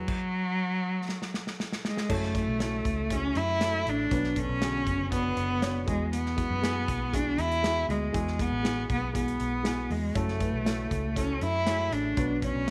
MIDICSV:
0, 0, Header, 1, 5, 480
1, 0, Start_track
1, 0, Key_signature, 3, "minor"
1, 0, Tempo, 503778
1, 79, Time_signature, 4, 2, 24, 8
1, 12102, End_track
2, 0, Start_track
2, 0, Title_t, "Upright piano"
2, 0, Program_c, 0, 0
2, 0, Control_c, 0, 64, 127
2, 0, Note_on_c, 0, 64, 78
2, 0, Note_on_c, 0, 66, 72
2, 0, Note_on_c, 0, 68, 66
2, 0, Note_on_c, 0, 71, 88
2, 0, Note_on_c, 0, 73, 83
2, 92, Control_c, 0, 64, 0
2, 97, Note_off_c, 0, 66, 0
2, 98, Note_off_c, 0, 71, 0
2, 99, Note_off_c, 0, 68, 0
2, 100, Note_off_c, 0, 73, 0
2, 101, Note_off_c, 0, 64, 0
2, 1989, Note_on_c, 0, 57, 92
2, 1994, Note_on_c, 0, 61, 88
2, 1994, Note_on_c, 0, 64, 85
2, 1998, Note_on_c, 0, 49, 61
2, 1999, Note_on_c, 0, 66, 78
2, 2001, Note_on_c, 0, 69, 105
2, 2175, Note_off_c, 0, 57, 0
2, 2175, Control_c, 0, 64, 127
2, 2177, Note_off_c, 0, 61, 0
2, 2178, Note_off_c, 0, 64, 0
2, 2180, Note_off_c, 0, 66, 0
2, 2181, Note_off_c, 0, 69, 0
2, 2233, Note_on_c, 0, 57, 65
2, 2235, Note_on_c, 0, 61, 59
2, 2238, Note_on_c, 0, 64, 58
2, 2243, Note_on_c, 0, 66, 55
2, 2247, Note_on_c, 0, 69, 68
2, 2417, Note_off_c, 0, 57, 0
2, 2418, Note_off_c, 0, 61, 0
2, 2420, Note_off_c, 0, 64, 0
2, 2422, Note_off_c, 0, 66, 0
2, 2424, Note_off_c, 0, 69, 0
2, 2467, Note_on_c, 0, 57, 75
2, 2472, Note_on_c, 0, 61, 65
2, 2473, Note_on_c, 0, 66, 69
2, 2474, Note_on_c, 0, 64, 68
2, 2480, Note_on_c, 0, 69, 85
2, 2679, Note_off_c, 0, 49, 0
2, 2836, Note_off_c, 0, 57, 0
2, 2838, Note_off_c, 0, 61, 0
2, 2839, Note_off_c, 0, 64, 0
2, 2839, Note_off_c, 0, 66, 0
2, 2842, Note_off_c, 0, 69, 0
2, 2952, Note_on_c, 0, 57, 70
2, 2958, Note_on_c, 0, 61, 66
2, 2958, Note_on_c, 0, 64, 67
2, 2963, Note_on_c, 0, 66, 65
2, 2965, Note_on_c, 0, 68, 76
2, 3318, Note_off_c, 0, 57, 0
2, 3321, Note_off_c, 0, 61, 0
2, 3321, Note_off_c, 0, 64, 0
2, 3324, Note_off_c, 0, 66, 0
2, 3325, Note_off_c, 0, 68, 0
2, 3432, Note_on_c, 0, 57, 81
2, 3432, Note_on_c, 0, 61, 67
2, 3433, Note_on_c, 0, 64, 72
2, 3440, Note_on_c, 0, 66, 70
2, 3443, Note_on_c, 0, 69, 90
2, 3798, Note_off_c, 0, 57, 0
2, 3798, Note_off_c, 0, 61, 0
2, 3799, Note_off_c, 0, 64, 0
2, 3802, Note_off_c, 0, 66, 0
2, 3804, Note_off_c, 0, 69, 0
2, 3914, Note_on_c, 0, 59, 93
2, 3917, Note_on_c, 0, 61, 80
2, 3920, Note_on_c, 0, 47, 65
2, 3921, Note_on_c, 0, 54, 64
2, 3921, Note_on_c, 0, 62, 85
2, 3923, Note_on_c, 0, 66, 82
2, 3927, Note_on_c, 0, 71, 102
2, 3931, Control_c, 0, 64, 0
2, 4097, Note_off_c, 0, 59, 0
2, 4099, Note_off_c, 0, 61, 0
2, 4101, Note_off_c, 0, 62, 0
2, 4102, Note_off_c, 0, 66, 0
2, 4104, Note_off_c, 0, 71, 0
2, 4104, Control_c, 0, 64, 127
2, 4146, Note_on_c, 0, 59, 64
2, 4149, Note_on_c, 0, 61, 56
2, 4155, Note_on_c, 0, 62, 60
2, 4157, Note_on_c, 0, 69, 71
2, 4158, Note_on_c, 0, 66, 60
2, 4333, Note_off_c, 0, 59, 0
2, 4335, Note_off_c, 0, 61, 0
2, 4338, Note_off_c, 0, 62, 0
2, 4339, Note_off_c, 0, 66, 0
2, 4339, Note_off_c, 0, 69, 0
2, 4390, Note_on_c, 0, 59, 76
2, 4396, Note_on_c, 0, 61, 70
2, 4397, Note_on_c, 0, 50, 71
2, 4401, Note_on_c, 0, 66, 68
2, 4404, Note_on_c, 0, 68, 86
2, 4600, Note_off_c, 0, 47, 0
2, 4601, Note_off_c, 0, 54, 0
2, 4757, Note_off_c, 0, 59, 0
2, 4760, Note_off_c, 0, 61, 0
2, 4761, Note_off_c, 0, 50, 0
2, 4762, Note_off_c, 0, 66, 0
2, 4764, Note_off_c, 0, 68, 0
2, 4874, Note_on_c, 0, 59, 70
2, 4876, Note_on_c, 0, 61, 65
2, 4879, Note_on_c, 0, 62, 64
2, 4884, Note_on_c, 0, 66, 67
2, 4889, Note_on_c, 0, 71, 84
2, 5239, Note_off_c, 0, 59, 0
2, 5240, Note_off_c, 0, 61, 0
2, 5242, Note_off_c, 0, 62, 0
2, 5244, Note_off_c, 0, 66, 0
2, 5246, Note_off_c, 0, 71, 0
2, 5351, Note_on_c, 0, 59, 75
2, 5352, Note_on_c, 0, 61, 73
2, 5355, Note_on_c, 0, 62, 76
2, 5360, Note_on_c, 0, 66, 75
2, 5360, Note_on_c, 0, 73, 91
2, 5575, Note_off_c, 0, 59, 0
2, 5582, Note_off_c, 0, 66, 0
2, 5587, Note_on_c, 0, 56, 81
2, 5590, Note_on_c, 0, 59, 71
2, 5592, Note_on_c, 0, 64, 69
2, 5594, Note_off_c, 0, 61, 0
2, 5595, Note_on_c, 0, 47, 62
2, 5596, Note_off_c, 0, 62, 0
2, 5597, Note_on_c, 0, 66, 72
2, 5597, Note_on_c, 0, 68, 85
2, 5598, Note_off_c, 0, 73, 0
2, 5610, Control_c, 0, 64, 0
2, 5778, Control_c, 0, 64, 127
2, 5976, Note_off_c, 0, 56, 0
2, 5977, Note_off_c, 0, 59, 0
2, 5978, Note_off_c, 0, 64, 0
2, 5981, Note_off_c, 0, 66, 0
2, 5981, Note_off_c, 0, 68, 0
2, 6063, Note_on_c, 0, 56, 66
2, 6064, Note_on_c, 0, 59, 59
2, 6067, Note_on_c, 0, 64, 65
2, 6070, Note_on_c, 0, 66, 61
2, 6076, Note_on_c, 0, 71, 78
2, 6252, Note_off_c, 0, 56, 0
2, 6252, Note_off_c, 0, 59, 0
2, 6254, Note_off_c, 0, 64, 0
2, 6255, Note_off_c, 0, 66, 0
2, 6258, Note_off_c, 0, 71, 0
2, 6278, Note_off_c, 0, 47, 0
2, 6307, Note_on_c, 0, 56, 77
2, 6311, Note_on_c, 0, 59, 69
2, 6312, Note_on_c, 0, 64, 75
2, 6316, Note_on_c, 0, 66, 73
2, 6316, Note_on_c, 0, 68, 87
2, 6675, Note_off_c, 0, 56, 0
2, 6678, Note_off_c, 0, 59, 0
2, 6678, Note_off_c, 0, 64, 0
2, 6680, Note_off_c, 0, 66, 0
2, 6680, Note_off_c, 0, 68, 0
2, 6791, Note_on_c, 0, 56, 79
2, 6794, Note_on_c, 0, 59, 64
2, 6799, Note_on_c, 0, 66, 66
2, 6800, Note_on_c, 0, 64, 67
2, 6802, Note_on_c, 0, 68, 80
2, 7158, Note_off_c, 0, 56, 0
2, 7159, Note_off_c, 0, 59, 0
2, 7162, Note_off_c, 0, 64, 0
2, 7162, Note_off_c, 0, 66, 0
2, 7163, Note_off_c, 0, 68, 0
2, 7265, Note_on_c, 0, 56, 78
2, 7267, Note_on_c, 0, 59, 73
2, 7273, Note_on_c, 0, 64, 72
2, 7276, Note_on_c, 0, 66, 69
2, 7278, Note_on_c, 0, 68, 82
2, 7514, Note_on_c, 0, 47, 63
2, 7635, Note_off_c, 0, 56, 0
2, 7635, Note_off_c, 0, 59, 0
2, 7639, Note_off_c, 0, 64, 0
2, 7640, Note_off_c, 0, 66, 0
2, 7641, Note_off_c, 0, 68, 0
2, 7741, Note_on_c, 0, 56, 92
2, 7742, Note_on_c, 0, 59, 85
2, 7749, Note_on_c, 0, 64, 91
2, 7750, Note_on_c, 0, 66, 87
2, 7752, Note_on_c, 0, 68, 107
2, 7931, Note_off_c, 0, 56, 0
2, 7931, Note_off_c, 0, 59, 0
2, 7935, Note_off_c, 0, 64, 0
2, 7935, Note_off_c, 0, 66, 0
2, 7936, Note_off_c, 0, 68, 0
2, 7983, Note_on_c, 0, 56, 64
2, 7985, Note_on_c, 0, 59, 57
2, 7989, Note_on_c, 0, 64, 58
2, 7993, Note_on_c, 0, 68, 72
2, 7994, Note_on_c, 0, 66, 56
2, 8172, Note_off_c, 0, 56, 0
2, 8173, Note_off_c, 0, 59, 0
2, 8175, Note_off_c, 0, 64, 0
2, 8177, Note_off_c, 0, 68, 0
2, 8178, Note_off_c, 0, 66, 0
2, 8198, Note_off_c, 0, 47, 0
2, 8221, Note_on_c, 0, 56, 77
2, 8228, Note_on_c, 0, 59, 69
2, 8230, Note_on_c, 0, 64, 72
2, 8233, Note_on_c, 0, 66, 70
2, 8234, Note_on_c, 0, 68, 87
2, 8593, Note_off_c, 0, 56, 0
2, 8596, Note_off_c, 0, 59, 0
2, 8597, Note_off_c, 0, 64, 0
2, 8599, Note_off_c, 0, 66, 0
2, 8600, Note_off_c, 0, 68, 0
2, 8701, Note_on_c, 0, 56, 70
2, 8702, Note_on_c, 0, 59, 67
2, 8709, Note_on_c, 0, 64, 63
2, 8712, Note_on_c, 0, 66, 61
2, 8715, Note_on_c, 0, 68, 78
2, 9073, Note_off_c, 0, 56, 0
2, 9074, Note_off_c, 0, 59, 0
2, 9077, Note_off_c, 0, 64, 0
2, 9078, Note_off_c, 0, 66, 0
2, 9080, Note_off_c, 0, 68, 0
2, 9178, Note_on_c, 0, 56, 75
2, 9180, Note_on_c, 0, 59, 66
2, 9184, Note_on_c, 0, 64, 72
2, 9186, Note_on_c, 0, 66, 68
2, 9189, Note_on_c, 0, 68, 85
2, 9551, Note_off_c, 0, 56, 0
2, 9553, Note_off_c, 0, 59, 0
2, 9555, Note_off_c, 0, 64, 0
2, 9556, Note_off_c, 0, 66, 0
2, 9557, Note_off_c, 0, 68, 0
2, 9670, Note_on_c, 0, 57, 92
2, 9672, Note_on_c, 0, 61, 88
2, 9672, Note_on_c, 0, 64, 84
2, 9676, Note_on_c, 0, 49, 64
2, 9680, Note_on_c, 0, 66, 83
2, 9681, Note_on_c, 0, 69, 97
2, 9691, Control_c, 0, 64, 0
2, 9846, Control_c, 0, 64, 127
2, 9856, Note_off_c, 0, 57, 0
2, 9857, Note_off_c, 0, 61, 0
2, 9857, Note_off_c, 0, 64, 0
2, 9861, Note_off_c, 0, 66, 0
2, 9861, Note_off_c, 0, 69, 0
2, 9908, Note_on_c, 0, 57, 61
2, 9911, Note_on_c, 0, 61, 59
2, 9914, Note_on_c, 0, 66, 58
2, 9916, Note_on_c, 0, 64, 57
2, 9922, Note_on_c, 0, 71, 71
2, 10095, Note_off_c, 0, 57, 0
2, 10097, Note_off_c, 0, 61, 0
2, 10098, Note_off_c, 0, 66, 0
2, 10099, Note_off_c, 0, 64, 0
2, 10102, Note_off_c, 0, 71, 0
2, 10142, Note_on_c, 0, 57, 82
2, 10148, Note_on_c, 0, 61, 70
2, 10149, Note_on_c, 0, 64, 70
2, 10155, Note_on_c, 0, 66, 67
2, 10157, Note_on_c, 0, 69, 84
2, 10359, Note_off_c, 0, 49, 0
2, 10514, Note_off_c, 0, 57, 0
2, 10517, Note_off_c, 0, 61, 0
2, 10517, Note_off_c, 0, 64, 0
2, 10520, Note_off_c, 0, 66, 0
2, 10521, Note_off_c, 0, 69, 0
2, 10625, Note_on_c, 0, 57, 72
2, 10630, Note_on_c, 0, 61, 67
2, 10633, Note_on_c, 0, 66, 64
2, 10634, Note_on_c, 0, 64, 69
2, 10639, Note_on_c, 0, 69, 80
2, 10996, Note_off_c, 0, 57, 0
2, 10998, Note_off_c, 0, 61, 0
2, 11000, Note_off_c, 0, 64, 0
2, 11000, Note_off_c, 0, 66, 0
2, 11003, Note_off_c, 0, 69, 0
2, 11113, Note_on_c, 0, 61, 73
2, 11115, Note_on_c, 0, 57, 81
2, 11115, Note_on_c, 0, 64, 71
2, 11118, Note_on_c, 0, 66, 71
2, 11125, Note_on_c, 0, 68, 82
2, 11480, Note_off_c, 0, 57, 0
2, 11480, Note_off_c, 0, 61, 0
2, 11480, Note_off_c, 0, 64, 0
2, 11482, Note_off_c, 0, 66, 0
2, 11486, Note_off_c, 0, 68, 0
2, 11596, Note_on_c, 0, 59, 92
2, 11598, Note_on_c, 0, 54, 62
2, 11600, Note_on_c, 0, 61, 82
2, 11601, Note_on_c, 0, 62, 85
2, 11602, Note_on_c, 0, 47, 59
2, 11603, Note_on_c, 0, 66, 87
2, 11610, Note_on_c, 0, 71, 99
2, 11611, Control_c, 0, 64, 0
2, 11779, Note_off_c, 0, 59, 0
2, 11781, Note_off_c, 0, 61, 0
2, 11781, Control_c, 0, 64, 127
2, 11782, Note_off_c, 0, 62, 0
2, 11783, Note_off_c, 0, 66, 0
2, 11786, Note_off_c, 0, 71, 0
2, 11842, Note_on_c, 0, 59, 64
2, 11844, Note_on_c, 0, 61, 59
2, 11847, Note_on_c, 0, 62, 61
2, 11850, Note_on_c, 0, 66, 60
2, 11853, Note_on_c, 0, 73, 75
2, 12022, Note_off_c, 0, 59, 0
2, 12023, Note_off_c, 0, 61, 0
2, 12025, Note_off_c, 0, 62, 0
2, 12026, Note_off_c, 0, 66, 0
2, 12028, Note_off_c, 0, 73, 0
2, 12102, Note_off_c, 0, 47, 0
2, 12102, Note_off_c, 0, 54, 0
2, 12102, End_track
3, 0, Start_track
3, 0, Title_t, "Cello"
3, 0, Program_c, 1, 42
3, 0, Note_on_c, 1, 54, 108
3, 1488, Note_off_c, 1, 54, 0
3, 1791, Note_on_c, 1, 56, 88
3, 2024, Note_on_c, 1, 57, 97
3, 2039, Note_off_c, 1, 56, 0
3, 2984, Note_on_c, 1, 61, 106
3, 2998, Note_off_c, 1, 57, 0
3, 3214, Note_on_c, 1, 64, 115
3, 3228, Note_off_c, 1, 61, 0
3, 3710, Note_on_c, 1, 62, 110
3, 3725, Note_off_c, 1, 64, 0
3, 4183, Note_on_c, 1, 61, 117
3, 4197, Note_off_c, 1, 62, 0
3, 4890, Note_off_c, 1, 61, 0
3, 4895, Note_on_c, 1, 59, 107
3, 5567, Note_off_c, 1, 59, 0
3, 5614, Note_on_c, 1, 56, 90
3, 5829, Note_off_c, 1, 56, 0
3, 5858, Note_on_c, 1, 59, 105
3, 6813, Note_on_c, 1, 62, 107
3, 6828, Note_off_c, 1, 59, 0
3, 7058, Note_on_c, 1, 64, 115
3, 7072, Note_off_c, 1, 62, 0
3, 7521, Note_off_c, 1, 64, 0
3, 7527, Note_on_c, 1, 56, 95
3, 8012, Note_on_c, 1, 59, 107
3, 8026, Note_off_c, 1, 56, 0
3, 8485, Note_off_c, 1, 59, 0
3, 8494, Note_on_c, 1, 59, 97
3, 8710, Note_off_c, 1, 59, 0
3, 8727, Note_on_c, 1, 59, 99
3, 9443, Note_on_c, 1, 56, 86
3, 9458, Note_off_c, 1, 59, 0
3, 9684, Note_on_c, 1, 57, 96
3, 9698, Note_off_c, 1, 56, 0
3, 10645, Note_on_c, 1, 61, 99
3, 10659, Note_off_c, 1, 57, 0
3, 10887, Note_on_c, 1, 64, 107
3, 10901, Note_off_c, 1, 61, 0
3, 11364, Note_on_c, 1, 62, 102
3, 11378, Note_off_c, 1, 64, 0
3, 11842, Note_off_c, 1, 62, 0
3, 11849, Note_on_c, 1, 61, 100
3, 12102, Note_off_c, 1, 61, 0
3, 12102, End_track
4, 0, Start_track
4, 0, Title_t, "Fingered electric bass"
4, 0, Program_c, 2, 33
4, 1998, Note_on_c, 2, 42, 100
4, 2332, Note_off_c, 2, 42, 0
4, 2359, Note_on_c, 2, 35, 90
4, 2693, Note_off_c, 2, 35, 0
4, 2719, Note_on_c, 2, 37, 85
4, 3165, Note_off_c, 2, 37, 0
4, 3200, Note_on_c, 2, 42, 105
4, 3645, Note_off_c, 2, 42, 0
4, 3681, Note_on_c, 2, 33, 88
4, 3902, Note_off_c, 2, 33, 0
4, 3920, Note_on_c, 2, 35, 103
4, 4253, Note_off_c, 2, 35, 0
4, 4278, Note_on_c, 2, 35, 93
4, 4612, Note_off_c, 2, 35, 0
4, 4638, Note_on_c, 2, 30, 92
4, 5084, Note_off_c, 2, 30, 0
4, 5113, Note_on_c, 2, 30, 95
4, 5561, Note_off_c, 2, 30, 0
4, 5600, Note_on_c, 2, 40, 95
4, 6160, Note_off_c, 2, 40, 0
4, 6197, Note_on_c, 2, 42, 86
4, 6532, Note_off_c, 2, 42, 0
4, 6557, Note_on_c, 2, 35, 96
4, 7003, Note_off_c, 2, 35, 0
4, 7031, Note_on_c, 2, 40, 102
4, 7480, Note_off_c, 2, 40, 0
4, 7514, Note_on_c, 2, 38, 95
4, 7739, Note_off_c, 2, 38, 0
4, 7759, Note_on_c, 2, 40, 96
4, 8093, Note_off_c, 2, 40, 0
4, 8118, Note_on_c, 2, 33, 89
4, 8452, Note_off_c, 2, 33, 0
4, 8479, Note_on_c, 2, 35, 91
4, 8925, Note_off_c, 2, 35, 0
4, 8960, Note_on_c, 2, 35, 86
4, 9405, Note_off_c, 2, 35, 0
4, 9436, Note_on_c, 2, 40, 89
4, 9660, Note_off_c, 2, 40, 0
4, 9675, Note_on_c, 2, 42, 98
4, 10011, Note_off_c, 2, 42, 0
4, 10036, Note_on_c, 2, 35, 89
4, 10372, Note_off_c, 2, 35, 0
4, 10396, Note_on_c, 2, 37, 84
4, 10844, Note_off_c, 2, 37, 0
4, 10876, Note_on_c, 2, 42, 102
4, 11324, Note_off_c, 2, 42, 0
4, 11350, Note_on_c, 2, 33, 88
4, 11577, Note_off_c, 2, 33, 0
4, 11599, Note_on_c, 2, 35, 109
4, 11934, Note_off_c, 2, 35, 0
4, 11955, Note_on_c, 2, 35, 95
4, 12102, Note_off_c, 2, 35, 0
4, 12102, End_track
5, 0, Start_track
5, 0, Title_t, "Drums"
5, 74, Note_on_c, 9, 49, 89
5, 77, Note_on_c, 9, 36, 106
5, 170, Note_off_c, 9, 49, 0
5, 173, Note_off_c, 9, 36, 0
5, 1037, Note_on_c, 9, 38, 57
5, 1132, Note_off_c, 9, 38, 0
5, 1162, Note_on_c, 9, 38, 59
5, 1257, Note_off_c, 9, 38, 0
5, 1279, Note_on_c, 9, 38, 77
5, 1375, Note_off_c, 9, 38, 0
5, 1402, Note_on_c, 9, 38, 65
5, 1497, Note_off_c, 9, 38, 0
5, 1524, Note_on_c, 9, 38, 85
5, 1619, Note_off_c, 9, 38, 0
5, 1644, Note_on_c, 9, 38, 81
5, 1739, Note_off_c, 9, 38, 0
5, 1761, Note_on_c, 9, 38, 102
5, 1856, Note_off_c, 9, 38, 0
5, 1881, Note_on_c, 9, 38, 93
5, 1977, Note_off_c, 9, 38, 0
5, 1998, Note_on_c, 9, 36, 116
5, 1999, Note_on_c, 9, 49, 100
5, 2094, Note_off_c, 9, 36, 0
5, 2095, Note_off_c, 9, 49, 0
5, 2120, Note_on_c, 9, 38, 36
5, 2215, Note_off_c, 9, 38, 0
5, 2238, Note_on_c, 9, 36, 95
5, 2241, Note_on_c, 9, 42, 81
5, 2333, Note_off_c, 9, 36, 0
5, 2337, Note_off_c, 9, 42, 0
5, 2480, Note_on_c, 9, 38, 123
5, 2481, Note_on_c, 9, 42, 90
5, 2575, Note_off_c, 9, 38, 0
5, 2576, Note_off_c, 9, 42, 0
5, 2717, Note_on_c, 9, 36, 93
5, 2721, Note_on_c, 9, 42, 63
5, 2812, Note_off_c, 9, 36, 0
5, 2816, Note_off_c, 9, 42, 0
5, 2957, Note_on_c, 9, 36, 88
5, 2959, Note_on_c, 9, 42, 97
5, 3053, Note_off_c, 9, 36, 0
5, 3055, Note_off_c, 9, 42, 0
5, 3195, Note_on_c, 9, 42, 75
5, 3290, Note_off_c, 9, 42, 0
5, 3438, Note_on_c, 9, 38, 111
5, 3440, Note_on_c, 9, 42, 98
5, 3533, Note_off_c, 9, 38, 0
5, 3535, Note_off_c, 9, 42, 0
5, 3684, Note_on_c, 9, 42, 73
5, 3779, Note_off_c, 9, 42, 0
5, 3918, Note_on_c, 9, 36, 109
5, 3921, Note_on_c, 9, 42, 89
5, 4014, Note_off_c, 9, 36, 0
5, 4016, Note_off_c, 9, 42, 0
5, 4036, Note_on_c, 9, 38, 38
5, 4132, Note_off_c, 9, 38, 0
5, 4156, Note_on_c, 9, 36, 94
5, 4156, Note_on_c, 9, 42, 81
5, 4251, Note_off_c, 9, 36, 0
5, 4252, Note_off_c, 9, 42, 0
5, 4399, Note_on_c, 9, 38, 122
5, 4399, Note_on_c, 9, 42, 96
5, 4494, Note_off_c, 9, 38, 0
5, 4495, Note_off_c, 9, 42, 0
5, 4637, Note_on_c, 9, 36, 98
5, 4642, Note_on_c, 9, 42, 67
5, 4732, Note_off_c, 9, 36, 0
5, 4737, Note_off_c, 9, 42, 0
5, 4877, Note_on_c, 9, 36, 92
5, 4878, Note_on_c, 9, 42, 102
5, 4973, Note_off_c, 9, 36, 0
5, 4974, Note_off_c, 9, 42, 0
5, 5115, Note_on_c, 9, 42, 75
5, 5210, Note_off_c, 9, 42, 0
5, 5357, Note_on_c, 9, 38, 118
5, 5359, Note_on_c, 9, 42, 99
5, 5453, Note_off_c, 9, 38, 0
5, 5455, Note_off_c, 9, 42, 0
5, 5599, Note_on_c, 9, 36, 109
5, 5602, Note_on_c, 9, 42, 76
5, 5694, Note_off_c, 9, 36, 0
5, 5697, Note_off_c, 9, 42, 0
5, 5841, Note_on_c, 9, 42, 96
5, 5937, Note_off_c, 9, 42, 0
5, 5961, Note_on_c, 9, 38, 38
5, 6057, Note_off_c, 9, 38, 0
5, 6077, Note_on_c, 9, 36, 97
5, 6080, Note_on_c, 9, 42, 80
5, 6172, Note_off_c, 9, 36, 0
5, 6176, Note_off_c, 9, 42, 0
5, 6323, Note_on_c, 9, 38, 127
5, 6323, Note_on_c, 9, 42, 94
5, 6418, Note_off_c, 9, 38, 0
5, 6418, Note_off_c, 9, 42, 0
5, 6559, Note_on_c, 9, 36, 96
5, 6566, Note_on_c, 9, 42, 65
5, 6654, Note_off_c, 9, 36, 0
5, 6661, Note_off_c, 9, 42, 0
5, 6799, Note_on_c, 9, 36, 95
5, 6805, Note_on_c, 9, 42, 98
5, 6894, Note_off_c, 9, 36, 0
5, 6900, Note_off_c, 9, 42, 0
5, 7036, Note_on_c, 9, 42, 75
5, 7131, Note_off_c, 9, 42, 0
5, 7162, Note_on_c, 9, 42, 50
5, 7257, Note_off_c, 9, 42, 0
5, 7280, Note_on_c, 9, 38, 109
5, 7282, Note_on_c, 9, 42, 92
5, 7376, Note_off_c, 9, 38, 0
5, 7378, Note_off_c, 9, 42, 0
5, 7527, Note_on_c, 9, 42, 78
5, 7623, Note_off_c, 9, 42, 0
5, 7760, Note_on_c, 9, 36, 114
5, 7761, Note_on_c, 9, 42, 91
5, 7855, Note_off_c, 9, 36, 0
5, 7856, Note_off_c, 9, 42, 0
5, 7883, Note_on_c, 9, 38, 37
5, 7978, Note_off_c, 9, 38, 0
5, 7998, Note_on_c, 9, 36, 100
5, 8002, Note_on_c, 9, 42, 79
5, 8093, Note_off_c, 9, 36, 0
5, 8098, Note_off_c, 9, 42, 0
5, 8241, Note_on_c, 9, 38, 120
5, 8242, Note_on_c, 9, 42, 91
5, 8336, Note_off_c, 9, 38, 0
5, 8337, Note_off_c, 9, 42, 0
5, 8477, Note_on_c, 9, 36, 95
5, 8484, Note_on_c, 9, 42, 65
5, 8572, Note_off_c, 9, 36, 0
5, 8579, Note_off_c, 9, 42, 0
5, 8718, Note_on_c, 9, 36, 90
5, 8722, Note_on_c, 9, 42, 100
5, 8813, Note_off_c, 9, 36, 0
5, 8818, Note_off_c, 9, 42, 0
5, 8842, Note_on_c, 9, 42, 56
5, 8937, Note_off_c, 9, 42, 0
5, 8954, Note_on_c, 9, 42, 74
5, 9049, Note_off_c, 9, 42, 0
5, 9194, Note_on_c, 9, 38, 114
5, 9196, Note_on_c, 9, 42, 95
5, 9289, Note_off_c, 9, 38, 0
5, 9291, Note_off_c, 9, 42, 0
5, 9438, Note_on_c, 9, 46, 73
5, 9534, Note_off_c, 9, 46, 0
5, 9675, Note_on_c, 9, 42, 92
5, 9676, Note_on_c, 9, 36, 115
5, 9770, Note_off_c, 9, 42, 0
5, 9771, Note_off_c, 9, 36, 0
5, 9798, Note_on_c, 9, 38, 37
5, 9893, Note_off_c, 9, 38, 0
5, 9913, Note_on_c, 9, 42, 77
5, 9915, Note_on_c, 9, 36, 88
5, 10008, Note_off_c, 9, 42, 0
5, 10010, Note_off_c, 9, 36, 0
5, 10160, Note_on_c, 9, 38, 127
5, 10161, Note_on_c, 9, 42, 94
5, 10256, Note_off_c, 9, 38, 0
5, 10256, Note_off_c, 9, 42, 0
5, 10396, Note_on_c, 9, 36, 90
5, 10402, Note_on_c, 9, 42, 64
5, 10492, Note_off_c, 9, 36, 0
5, 10497, Note_off_c, 9, 42, 0
5, 10637, Note_on_c, 9, 36, 88
5, 10640, Note_on_c, 9, 42, 99
5, 10733, Note_off_c, 9, 36, 0
5, 10735, Note_off_c, 9, 42, 0
5, 10876, Note_on_c, 9, 42, 73
5, 10971, Note_off_c, 9, 42, 0
5, 11115, Note_on_c, 9, 38, 115
5, 11117, Note_on_c, 9, 42, 99
5, 11210, Note_off_c, 9, 38, 0
5, 11212, Note_off_c, 9, 42, 0
5, 11363, Note_on_c, 9, 42, 79
5, 11458, Note_off_c, 9, 42, 0
5, 11598, Note_on_c, 9, 36, 116
5, 11598, Note_on_c, 9, 42, 88
5, 11693, Note_off_c, 9, 36, 0
5, 11693, Note_off_c, 9, 42, 0
5, 11837, Note_on_c, 9, 36, 93
5, 11838, Note_on_c, 9, 42, 78
5, 11932, Note_off_c, 9, 36, 0
5, 11934, Note_off_c, 9, 42, 0
5, 12102, End_track
0, 0, End_of_file